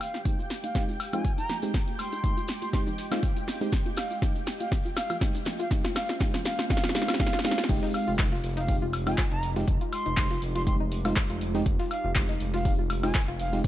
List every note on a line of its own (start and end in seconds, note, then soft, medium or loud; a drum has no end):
0.00 5.67 G#3 medium
0.00 5.67 F4 medium
0.00 2.71 G4 medium
0.00 7.70 G4 medium
0.00 5.67 D#5 medium
0.00 0.21 F5 medium
0.00 7.70 G5 medium
0.00 open hi-hat loud
0.00 high woodblock medium
0.00 maracas medium
0.14 0.19 F4 loud
0.14 snare soft
0.14 maracas soft
0.25 0.36 G#3 medium
0.25 0.36 C4 medium
0.25 0.36 D#4 medium
0.25 0.36 G4 medium
0.25 kick loud
0.25 closed hi-hat medium
0.25 high conga medium
0.25 maracas soft
0.39 0.43 F4 medium
0.39 maracas soft
0.50 snare soft
0.50 open hi-hat medium
0.50 maracas medium
0.64 0.70 D#4 loud
0.64 0.83 F5 medium
0.64 closed hi-hat medium
0.64 high conga medium
0.64 maracas soft
0.75 0.91 G#3 medium
0.75 0.91 C4 medium
0.75 0.91 D#4 medium
0.75 0.91 G4 medium
0.75 kick loud
0.75 snare medium
0.75 closed hi-hat medium
0.75 maracas soft
0.88 0.93 F4 loud
0.88 maracas soft
1.00 open hi-hat loud
1.00 high woodblock medium
1.00 maracas medium
1.13 1.22 G#3 medium
1.13 1.22 C4 medium
1.13 1.22 D#4 medium
1.13 1.18 F4 medium
1.13 1.22 F4 loud
1.13 1.32 G#5 medium
1.13 closed hi-hat medium
1.13 high conga medium
1.13 low conga medium
1.13 high woodblock medium
1.13 maracas soft
1.24 kick loud
1.24 closed hi-hat medium
1.24 maracas medium
1.38 1.45 D#4 medium
1.38 1.57 A#5 medium
1.38 closed hi-hat soft
1.38 maracas soft
1.49 snare medium
1.49 open hi-hat medium
1.49 high conga medium
1.49 low conga medium
1.49 maracas medium
1.62 1.72 G#3 medium
1.62 1.72 C4 medium
1.62 1.72 D#4 medium
1.62 1.67 F4 loud
1.62 1.72 G4 medium
1.62 closed hi-hat soft
1.62 high bongo soft
1.62 maracas soft
1.74 kick loud
1.74 snare medium
1.74 closed hi-hat medium
1.74 maracas medium
1.88 1.92 F4 medium
1.88 closed hi-hat soft
1.88 high conga medium
1.99 2.49 C6 medium
1.99 open hi-hat loud
1.99 high woodblock medium
1.99 maracas medium
2.12 2.19 D#4 medium
2.12 high bongo medium
2.12 maracas soft
2.24 2.34 G#3 medium
2.24 2.34 C4 medium
2.24 2.34 D#4 medium
2.24 2.34 G4 medium
2.24 kick loud
2.24 closed hi-hat medium
2.24 high conga medium
2.24 maracas soft
2.37 2.42 F4 loud
2.37 maracas soft
2.48 snare medium
2.48 open hi-hat medium
2.48 maracas medium
2.62 2.67 F4 medium
2.62 2.69 C6 medium
2.62 closed hi-hat soft
2.62 high conga medium
2.62 maracas soft
2.73 2.89 G#3 medium
2.73 2.89 C4 medium
2.73 2.89 D#4 medium
2.73 2.89 G4 medium
2.73 5.68 G4 medium
2.73 2.82 C6 medium
2.73 kick loud
2.73 snare medium
2.73 closed hi-hat medium
2.73 maracas medium
2.87 2.94 D#4 loud
2.87 low conga medium
2.87 maracas soft
2.98 open hi-hat loud
2.98 maracas medium
3.12 3.20 G#3 medium
3.12 3.20 C4 medium
3.12 3.20 D#4 medium
3.12 3.16 F4 loud
3.12 3.20 F4 loud
3.12 snare medium
3.12 closed hi-hat medium
3.12 high conga medium
3.12 high woodblock medium
3.12 maracas soft
3.23 kick loud
3.23 closed hi-hat medium
3.23 maracas medium
3.36 3.41 F4 medium
3.36 closed hi-hat soft
3.36 maracas soft
3.48 snare medium
3.48 open hi-hat medium
3.48 high conga medium
3.48 maracas medium
3.61 3.70 G#3 medium
3.61 3.70 C4 medium
3.61 3.68 D#4 medium
3.61 3.70 D#4 medium
3.61 3.70 G4 medium
3.61 closed hi-hat soft
3.61 maracas soft
3.72 kick loud
3.72 snare medium
3.72 closed hi-hat medium
3.72 maracas medium
3.86 3.90 F4 loud
3.86 closed hi-hat soft
3.86 high conga loud
3.97 4.17 F5 medium
3.97 snare medium
3.97 open hi-hat loud
3.97 high woodblock medium
3.97 maracas medium
4.10 4.15 F4 medium
4.10 maracas soft
4.22 4.32 G#3 medium
4.22 4.32 C4 medium
4.22 4.33 D#4 medium
4.22 4.33 G4 medium
4.22 kick loud
4.22 snare medium
4.22 closed hi-hat medium
4.22 high conga medium
4.22 maracas medium
4.35 4.42 D#4 medium
4.35 maracas soft
4.47 snare medium
4.47 open hi-hat loud
4.47 maracas loud
4.60 4.65 F4 medium
4.60 4.70 F5 medium
4.60 closed hi-hat soft
4.60 high conga loud
4.60 maracas soft
4.72 kick loud
4.72 snare medium
4.72 closed hi-hat medium
4.72 maracas medium
4.85 4.90 F4 loud
4.85 maracas soft
4.96 5.16 F5 medium
4.96 snare medium
4.96 open hi-hat loud
4.96 high woodblock medium
4.96 maracas medium
5.10 5.14 F4 medium
5.10 closed hi-hat medium
5.10 high conga medium
5.10 low conga medium
5.10 high woodblock medium
5.10 maracas soft
5.21 5.32 G#3 medium
5.21 5.32 C4 medium
5.21 5.32 D#4 medium
5.21 5.32 G4 medium
5.21 kick loud
5.21 snare medium
5.21 closed hi-hat medium
5.21 maracas medium
5.35 5.41 D#4 medium
5.35 closed hi-hat soft
5.35 maracas soft
5.46 snare medium
5.46 open hi-hat loud
5.46 high conga medium
5.46 low conga medium
5.46 maracas medium
5.59 5.64 F4 medium
5.59 5.69 F5 medium
5.59 closed hi-hat soft
5.59 high bongo medium
5.59 maracas soft
5.71 5.81 G#3 medium
5.71 7.67 G#3 medium
5.71 7.67 A#3 medium
5.71 5.81 C4 medium
5.71 7.67 C#4 medium
5.71 5.81 D#4 medium
5.71 5.81 G4 medium
5.71 7.67 C5 medium
5.71 kick loud
5.71 snare medium
5.71 closed hi-hat medium
5.71 maracas medium
5.84 5.89 F4 loud
5.84 snare medium
5.84 closed hi-hat soft
5.84 high conga loud
5.96 6.16 F5 medium
5.96 snare medium
5.96 open hi-hat loud
5.96 high woodblock medium
5.96 maracas loud
6.09 6.14 F4 medium
6.09 snare medium
6.09 high bongo medium
6.09 maracas soft
6.20 6.31 G#3 medium
6.20 6.31 C4 medium
6.20 6.31 D#4 medium
6.20 6.31 G4 medium
6.20 kick loud
6.20 snare loud
6.20 closed hi-hat medium
6.20 high conga medium
6.20 maracas medium
6.34 6.38 F4 loud
6.34 snare medium
6.34 low conga medium
6.34 maracas soft
6.45 6.65 F5 medium
6.45 snare loud
6.45 open hi-hat loud
6.45 maracas loud
6.59 6.63 F4 medium
6.59 snare medium
6.59 closed hi-hat soft
6.59 high conga loud
6.59 maracas soft
6.70 6.80 G#3 medium
6.70 6.80 C4 medium
6.70 6.80 D#4 medium
6.70 6.80 G4 medium
6.70 6.90 F5 medium
6.70 kick loud
6.70 snare loud
6.70 closed hi-hat medium
6.70 maracas medium
6.77 snare medium
6.83 6.88 F4 loud
6.83 snare medium
6.83 low conga medium
6.83 maracas soft
6.89 snare medium
6.95 7.05 G#3 medium
6.95 7.05 C4 medium
6.95 7.05 D#4 medium
6.95 7.05 G4 medium
6.95 7.15 F5 medium
6.95 snare loud
6.95 open hi-hat loud
6.95 maracas loud
7.02 snare medium
7.08 7.13 F4 loud
7.08 snare loud
7.08 closed hi-hat medium
7.08 high conga medium
7.08 high woodblock medium
7.08 maracas soft
7.14 snare loud
7.20 7.30 G#3 medium
7.20 7.30 C4 medium
7.20 7.30 D#4 medium
7.20 7.30 G4 medium
7.20 7.39 F5 loud
7.20 kick loud
7.20 snare loud
7.20 closed hi-hat medium
7.20 maracas medium
7.27 snare loud
7.33 7.38 F4 loud
7.33 snare medium
7.33 closed hi-hat soft
7.33 maracas soft
7.39 snare medium
7.44 7.55 G#3 medium
7.44 7.55 C4 medium
7.44 7.55 D#4 medium
7.44 7.55 G4 medium
7.44 7.64 F5 medium
7.44 snare loud
7.44 open hi-hat loud
7.44 high conga medium
7.44 maracas loud
7.51 snare medium
7.58 7.62 F4 loud
7.58 snare loud
7.58 closed hi-hat soft
7.58 maracas soft
7.64 snare loud
7.69 7.80 F1 loud
7.69 8.14 G#3 loud
7.69 13.68 G#3 medium
7.69 8.14 C4 medium
7.69 13.60 D#4 medium
7.69 8.14 D#4 medium
7.69 13.60 F4 medium
7.69 13.60 G4 medium
7.69 8.14 G4 loud
7.69 kick loud
7.69 closed hi-hat medium
7.69 crash loud
7.83 7.89 D#4 loud
7.83 snare soft
7.83 closed hi-hat soft
7.94 8.14 F5 medium
7.94 closed hi-hat medium
7.94 open hi-hat loud
7.94 high woodblock medium
8.08 8.41 F1 medium
8.08 8.12 F4 loud
8.19 8.29 G#3 medium
8.19 8.29 C4 medium
8.19 8.29 D#4 medium
8.19 8.29 G4 medium
8.19 kick loud
8.19 snare loud
8.19 clap loud
8.19 closed hi-hat medium
8.32 8.37 F4 medium
8.32 snare medium
8.44 8.78 F1 loud
8.44 closed hi-hat medium
8.44 open hi-hat loud
8.57 8.64 D#4 loud
8.57 8.76 F5 medium
8.57 snare soft
8.57 closed hi-hat medium
8.68 8.84 G#3 medium
8.68 8.85 C4 medium
8.68 8.85 D#4 medium
8.68 8.85 G4 medium
8.68 kick loud
8.68 closed hi-hat medium
8.68 open hi-hat medium
8.82 9.15 F1 medium
8.82 8.86 F4 loud
8.93 closed hi-hat medium
8.93 open hi-hat loud
8.93 high woodblock medium
9.07 9.15 G#3 loud
9.07 9.15 C4 medium
9.07 9.15 D#4 medium
9.07 9.11 F4 medium
9.07 9.16 F4 loud
9.07 9.26 G#5 medium
9.07 snare soft
9.07 closed hi-hat medium
9.07 high woodblock medium
9.18 kick loud
9.18 snare loud
9.18 clap loud
9.18 closed hi-hat medium
9.31 9.65 F1 medium
9.31 9.38 D#4 loud
9.31 9.50 A#5 loud
9.31 closed hi-hat soft
9.43 closed hi-hat medium
9.43 open hi-hat medium
9.56 9.65 G#3 medium
9.56 9.65 C4 medium
9.56 9.65 D#4 medium
9.56 9.61 F4 loud
9.56 9.65 G4 loud
9.56 snare soft
9.56 closed hi-hat soft
9.68 9.79 F1 loud
9.68 kick loud
9.68 closed hi-hat medium
9.81 9.86 F4 medium
9.81 closed hi-hat soft
9.92 10.42 C6 loud
9.92 closed hi-hat medium
9.92 open hi-hat loud
9.92 high woodblock medium
10.06 10.39 F1 medium
10.06 10.13 D#4 loud
10.06 closed hi-hat soft
10.17 10.28 G#3 medium
10.17 10.28 C4 medium
10.17 10.28 D#4 medium
10.17 10.28 G4 medium
10.17 kick loud
10.17 snare loud
10.17 clap loud
10.17 closed hi-hat medium
10.31 10.35 F4 loud
10.31 snare soft
10.42 10.77 F1 loud
10.42 closed hi-hat medium
10.42 open hi-hat loud
10.55 10.60 F4 medium
10.55 10.63 C6 medium
10.55 snare medium
10.55 closed hi-hat medium
10.67 10.83 G#3 medium
10.67 10.83 C4 medium
10.67 10.83 D#4 medium
10.67 10.83 G4 loud
10.67 10.75 C6 medium
10.67 kick loud
10.67 closed hi-hat medium
10.80 11.13 F1 medium
10.80 10.87 D#4 loud
10.92 closed hi-hat medium
10.92 open hi-hat loud
11.05 11.14 G#3 medium
11.05 11.14 C4 medium
11.05 11.14 D#4 medium
11.05 11.10 F4 loud
11.05 11.14 F4 loud
11.05 snare soft
11.05 closed hi-hat medium
11.05 high woodblock medium
11.16 kick loud
11.16 snare loud
11.16 clap loud
11.16 closed hi-hat medium
11.30 11.63 F1 medium
11.30 11.34 F4 medium
11.30 closed hi-hat soft
11.41 closed hi-hat medium
11.41 open hi-hat loud
11.55 11.63 G#3 medium
11.55 11.63 C4 medium
11.55 11.61 D#4 medium
11.55 11.63 D#4 medium
11.55 11.63 G4 medium
11.55 snare soft
11.55 closed hi-hat soft
11.66 11.77 F1 loud
11.66 kick loud
11.66 closed hi-hat medium
11.79 11.84 F4 loud
11.79 snare soft
11.79 closed hi-hat soft
11.91 12.11 F5 medium
11.91 closed hi-hat medium
11.91 open hi-hat loud
11.91 high woodblock medium
12.04 12.37 F1 medium
12.04 12.09 F4 medium
12.15 12.26 G#3 medium
12.15 12.26 C4 medium
12.15 12.26 D#4 medium
12.15 12.26 G4 medium
12.15 kick loud
12.15 snare loud
12.15 clap loud
12.15 closed hi-hat medium
12.29 12.36 D#4 loud
12.29 snare medium
12.40 12.75 F1 loud
12.40 closed hi-hat medium
12.40 open hi-hat loud
12.54 12.58 F4 loud
12.54 12.73 F5 medium
12.54 snare medium
12.54 closed hi-hat medium
12.65 12.81 G#3 medium
12.65 12.81 C4 medium
12.65 12.81 D#4 medium
12.65 12.81 G4 medium
12.65 kick loud
12.65 closed hi-hat medium
12.65 open hi-hat medium
12.79 13.12 F1 medium
12.79 12.83 F4 medium
12.90 closed hi-hat medium
12.90 open hi-hat loud
12.90 high woodblock medium
13.03 13.12 G#3 loud
13.03 13.12 C4 medium
13.03 13.12 D#4 medium
13.03 13.10 D#4 loud
13.03 13.12 F4 loud
13.03 13.22 G#5 medium
13.03 snare soft
13.03 closed hi-hat medium
13.03 high woodblock medium
13.15 kick loud
13.15 snare loud
13.15 clap loud
13.15 closed hi-hat medium
13.28 13.61 F1 medium
13.28 13.33 F4 loud
13.28 closed hi-hat soft
13.39 13.59 F5 medium
13.39 closed hi-hat medium
13.39 open hi-hat loud
13.53 13.62 G#3 medium
13.53 13.62 C4 medium
13.53 13.62 D#4 medium
13.53 13.57 F4 medium
13.53 13.62 G4 medium
13.53 snare soft
13.53 closed hi-hat soft
13.64 13.68 A#1 loud
13.64 13.68 F4 medium
13.64 13.68 C5 medium
13.64 kick loud
13.64 closed hi-hat medium